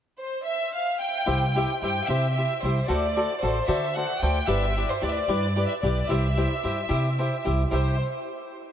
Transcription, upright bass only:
0, 0, Header, 1, 2, 480
1, 0, Start_track
1, 0, Key_signature, 0, "major"
1, 0, Tempo, 538600
1, 1124, Time_signature, 6, 3, 24, 8
1, 7773, End_track
2, 0, Start_track
2, 0, Title_t, "Upright bass"
2, 0, Program_c, 0, 32
2, 1137, Note_on_c, 0, 36, 67
2, 1452, Note_off_c, 0, 36, 0
2, 1623, Note_on_c, 0, 43, 59
2, 1770, Note_off_c, 0, 43, 0
2, 1857, Note_on_c, 0, 48, 69
2, 2170, Note_off_c, 0, 48, 0
2, 2342, Note_on_c, 0, 36, 68
2, 2488, Note_off_c, 0, 36, 0
2, 2580, Note_on_c, 0, 38, 68
2, 2889, Note_off_c, 0, 38, 0
2, 3056, Note_on_c, 0, 33, 71
2, 3202, Note_off_c, 0, 33, 0
2, 3286, Note_on_c, 0, 50, 72
2, 3599, Note_off_c, 0, 50, 0
2, 3768, Note_on_c, 0, 38, 80
2, 3915, Note_off_c, 0, 38, 0
2, 3991, Note_on_c, 0, 31, 75
2, 4307, Note_off_c, 0, 31, 0
2, 4480, Note_on_c, 0, 38, 61
2, 4628, Note_off_c, 0, 38, 0
2, 4707, Note_on_c, 0, 43, 70
2, 5024, Note_off_c, 0, 43, 0
2, 5198, Note_on_c, 0, 35, 81
2, 5347, Note_off_c, 0, 35, 0
2, 5427, Note_on_c, 0, 36, 75
2, 5747, Note_off_c, 0, 36, 0
2, 5925, Note_on_c, 0, 43, 57
2, 6075, Note_off_c, 0, 43, 0
2, 6153, Note_on_c, 0, 48, 64
2, 6475, Note_off_c, 0, 48, 0
2, 6656, Note_on_c, 0, 36, 76
2, 6805, Note_off_c, 0, 36, 0
2, 6884, Note_on_c, 0, 36, 69
2, 7125, Note_off_c, 0, 36, 0
2, 7773, End_track
0, 0, End_of_file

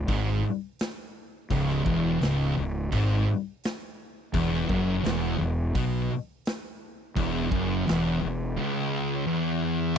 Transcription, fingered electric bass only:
0, 0, Header, 1, 2, 480
1, 0, Start_track
1, 0, Tempo, 706714
1, 1021, Time_signature, 4, 2, 24, 8
1, 6778, End_track
2, 0, Start_track
2, 0, Title_t, "Fingered electric bass"
2, 0, Program_c, 0, 33
2, 59, Note_on_c, 0, 32, 99
2, 282, Note_off_c, 0, 32, 0
2, 1024, Note_on_c, 0, 25, 97
2, 1247, Note_off_c, 0, 25, 0
2, 1264, Note_on_c, 0, 28, 91
2, 1486, Note_off_c, 0, 28, 0
2, 1508, Note_on_c, 0, 25, 88
2, 1729, Note_off_c, 0, 25, 0
2, 1754, Note_on_c, 0, 25, 87
2, 1972, Note_off_c, 0, 25, 0
2, 1987, Note_on_c, 0, 32, 108
2, 2209, Note_off_c, 0, 32, 0
2, 2952, Note_on_c, 0, 28, 91
2, 3172, Note_off_c, 0, 28, 0
2, 3186, Note_on_c, 0, 30, 107
2, 3409, Note_off_c, 0, 30, 0
2, 3428, Note_on_c, 0, 28, 85
2, 3650, Note_off_c, 0, 28, 0
2, 3665, Note_on_c, 0, 28, 88
2, 3889, Note_off_c, 0, 28, 0
2, 3904, Note_on_c, 0, 35, 96
2, 4128, Note_off_c, 0, 35, 0
2, 4866, Note_on_c, 0, 28, 94
2, 5088, Note_off_c, 0, 28, 0
2, 5108, Note_on_c, 0, 30, 86
2, 5329, Note_off_c, 0, 30, 0
2, 5361, Note_on_c, 0, 28, 91
2, 5575, Note_off_c, 0, 28, 0
2, 5596, Note_on_c, 0, 28, 78
2, 5812, Note_off_c, 0, 28, 0
2, 6778, End_track
0, 0, End_of_file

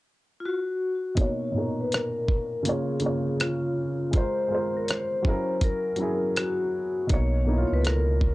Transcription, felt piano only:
0, 0, Header, 1, 2, 480
1, 0, Start_track
1, 0, Tempo, 740741
1, 761, Time_signature, 4, 2, 24, 8
1, 5409, End_track
2, 0, Start_track
2, 0, Title_t, "Felt piano"
2, 0, Program_c, 0, 0
2, 744, Note_on_c, 0, 47, 67
2, 758, Note_on_c, 0, 58, 60
2, 773, Note_on_c, 0, 63, 62
2, 785, Note_on_c, 0, 73, 76
2, 887, Control_c, 0, 64, 127
2, 941, Note_off_c, 0, 47, 0
2, 948, Note_off_c, 0, 58, 0
2, 955, Note_off_c, 0, 63, 0
2, 961, Note_off_c, 0, 73, 0
2, 982, Note_on_c, 0, 47, 56
2, 997, Note_on_c, 0, 46, 56
2, 1010, Note_on_c, 0, 63, 55
2, 1025, Note_on_c, 0, 70, 64
2, 1670, Note_off_c, 0, 47, 0
2, 1677, Note_off_c, 0, 46, 0
2, 1684, Note_off_c, 0, 63, 0
2, 1691, Note_off_c, 0, 70, 0
2, 1703, Note_on_c, 0, 49, 75
2, 1717, Note_on_c, 0, 58, 72
2, 1729, Note_on_c, 0, 65, 66
2, 1731, Control_c, 0, 64, 0
2, 1744, Note_on_c, 0, 73, 83
2, 1829, Control_c, 0, 64, 127
2, 1919, Note_off_c, 0, 49, 0
2, 1926, Note_off_c, 0, 58, 0
2, 1932, Note_off_c, 0, 65, 0
2, 1939, Note_off_c, 0, 73, 0
2, 1942, Note_on_c, 0, 49, 60
2, 1956, Note_on_c, 0, 58, 61
2, 1970, Note_on_c, 0, 65, 58
2, 1983, Note_on_c, 0, 73, 65
2, 2451, Note_off_c, 0, 49, 0
2, 2458, Note_off_c, 0, 58, 0
2, 2465, Note_off_c, 0, 65, 0
2, 2472, Note_off_c, 0, 73, 0
2, 2663, Note_on_c, 0, 56, 64
2, 2677, Note_on_c, 0, 65, 61
2, 2688, Control_c, 0, 64, 0
2, 2691, Note_on_c, 0, 70, 58
2, 2705, Note_on_c, 0, 72, 76
2, 2812, Control_c, 0, 64, 127
2, 2860, Note_off_c, 0, 56, 0
2, 2867, Note_off_c, 0, 65, 0
2, 2874, Note_off_c, 0, 70, 0
2, 2881, Note_off_c, 0, 72, 0
2, 2904, Note_on_c, 0, 56, 57
2, 2917, Note_on_c, 0, 65, 55
2, 2931, Note_on_c, 0, 70, 57
2, 2946, Note_on_c, 0, 72, 65
2, 3384, Note_on_c, 0, 54, 67
2, 3392, Note_off_c, 0, 56, 0
2, 3398, Note_on_c, 0, 61, 65
2, 3399, Note_off_c, 0, 65, 0
2, 3406, Note_off_c, 0, 70, 0
2, 3410, Control_c, 0, 64, 0
2, 3411, Note_on_c, 0, 64, 64
2, 3413, Note_off_c, 0, 72, 0
2, 3425, Note_on_c, 0, 70, 79
2, 3538, Control_c, 0, 64, 127
2, 3806, Note_off_c, 0, 54, 0
2, 3813, Note_off_c, 0, 61, 0
2, 3820, Note_off_c, 0, 64, 0
2, 3827, Note_off_c, 0, 70, 0
2, 3861, Note_on_c, 0, 54, 66
2, 3876, Note_on_c, 0, 61, 57
2, 3890, Note_on_c, 0, 64, 65
2, 3904, Note_on_c, 0, 68, 74
2, 4371, Note_off_c, 0, 54, 0
2, 4378, Note_off_c, 0, 61, 0
2, 4385, Note_off_c, 0, 64, 0
2, 4392, Note_off_c, 0, 68, 0
2, 4580, Note_on_c, 0, 47, 69
2, 4595, Note_on_c, 0, 58, 57
2, 4608, Control_c, 0, 64, 0
2, 4610, Note_on_c, 0, 63, 59
2, 4623, Note_on_c, 0, 73, 78
2, 4737, Control_c, 0, 64, 127
2, 4779, Note_off_c, 0, 47, 0
2, 4786, Note_off_c, 0, 58, 0
2, 4793, Note_off_c, 0, 63, 0
2, 4800, Note_off_c, 0, 73, 0
2, 4823, Note_on_c, 0, 47, 62
2, 4838, Note_on_c, 0, 58, 58
2, 4852, Note_on_c, 0, 63, 62
2, 4865, Note_on_c, 0, 64, 55
2, 4908, Note_off_c, 0, 64, 0
2, 4909, Note_on_c, 0, 65, 71
2, 5409, Note_off_c, 0, 47, 0
2, 5409, Note_off_c, 0, 58, 0
2, 5409, Note_off_c, 0, 63, 0
2, 5409, Note_off_c, 0, 65, 0
2, 5409, End_track
0, 0, End_of_file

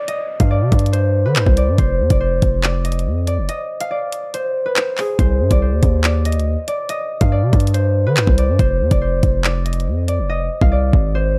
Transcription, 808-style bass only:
0, 0, Header, 1, 2, 480
1, 0, Start_track
1, 0, Tempo, 425532
1, 94, Time_signature, 4, 2, 24, 8
1, 12845, End_track
2, 0, Start_track
2, 0, Title_t, "808-style bass"
2, 0, Program_c, 0, 38
2, 452, Note_on_c, 0, 43, 104
2, 692, Note_on_c, 0, 48, 98
2, 709, Note_off_c, 0, 43, 0
2, 807, Note_off_c, 0, 48, 0
2, 812, Note_on_c, 0, 43, 108
2, 1412, Note_on_c, 0, 51, 100
2, 1428, Note_off_c, 0, 43, 0
2, 1532, Note_on_c, 0, 43, 96
2, 1549, Note_off_c, 0, 51, 0
2, 1646, Note_off_c, 0, 43, 0
2, 1652, Note_on_c, 0, 36, 107
2, 1894, Note_on_c, 0, 43, 92
2, 1911, Note_off_c, 0, 36, 0
2, 2008, Note_off_c, 0, 43, 0
2, 2013, Note_on_c, 0, 29, 104
2, 2253, Note_on_c, 0, 41, 100
2, 2270, Note_off_c, 0, 29, 0
2, 2367, Note_off_c, 0, 41, 0
2, 2373, Note_on_c, 0, 29, 99
2, 2719, Note_off_c, 0, 29, 0
2, 2734, Note_on_c, 0, 29, 109
2, 3453, Note_on_c, 0, 41, 98
2, 3470, Note_off_c, 0, 29, 0
2, 3812, Note_on_c, 0, 29, 95
2, 3829, Note_off_c, 0, 41, 0
2, 3927, Note_off_c, 0, 29, 0
2, 5854, Note_on_c, 0, 36, 103
2, 6093, Note_on_c, 0, 43, 97
2, 6110, Note_off_c, 0, 36, 0
2, 6207, Note_off_c, 0, 43, 0
2, 6213, Note_on_c, 0, 36, 102
2, 6454, Note_on_c, 0, 39, 97
2, 6471, Note_off_c, 0, 36, 0
2, 6568, Note_off_c, 0, 39, 0
2, 6573, Note_on_c, 0, 39, 106
2, 7173, Note_on_c, 0, 38, 98
2, 7190, Note_off_c, 0, 39, 0
2, 7294, Note_on_c, 0, 39, 100
2, 7311, Note_off_c, 0, 38, 0
2, 7407, Note_off_c, 0, 39, 0
2, 8134, Note_on_c, 0, 43, 105
2, 8373, Note_on_c, 0, 48, 98
2, 8390, Note_off_c, 0, 43, 0
2, 8487, Note_off_c, 0, 48, 0
2, 8493, Note_on_c, 0, 43, 106
2, 9093, Note_on_c, 0, 51, 102
2, 9110, Note_off_c, 0, 43, 0
2, 9212, Note_on_c, 0, 43, 95
2, 9229, Note_off_c, 0, 51, 0
2, 9327, Note_off_c, 0, 43, 0
2, 9333, Note_on_c, 0, 36, 102
2, 9573, Note_on_c, 0, 43, 100
2, 9589, Note_off_c, 0, 36, 0
2, 9687, Note_off_c, 0, 43, 0
2, 9693, Note_on_c, 0, 29, 108
2, 9933, Note_on_c, 0, 41, 100
2, 9950, Note_off_c, 0, 29, 0
2, 10047, Note_off_c, 0, 41, 0
2, 10054, Note_on_c, 0, 29, 97
2, 10399, Note_off_c, 0, 29, 0
2, 10412, Note_on_c, 0, 29, 106
2, 11135, Note_on_c, 0, 41, 94
2, 11152, Note_off_c, 0, 29, 0
2, 11493, Note_on_c, 0, 29, 94
2, 11510, Note_off_c, 0, 41, 0
2, 11835, Note_off_c, 0, 29, 0
2, 11973, Note_on_c, 0, 36, 101
2, 12319, Note_off_c, 0, 36, 0
2, 12333, Note_on_c, 0, 32, 108
2, 12845, Note_off_c, 0, 32, 0
2, 12845, End_track
0, 0, End_of_file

